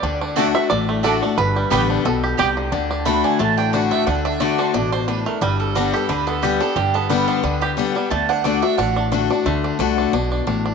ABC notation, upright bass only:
X:1
M:4/4
L:1/8
Q:"Swing" 1/4=178
K:Dmix
V:1 name="Upright bass" clef=bass
D,,4 A,,,4 | G,,,2 A,,,2 B,,,2 C,,2 | D,,4 A,,,4 | D,,4 A,,,4 |
G,,,4 D,,4 | G,,,4 D,,4 | D,,4 A,,,4 | D,,2 C,,2 B,,,2 A,,,2 |]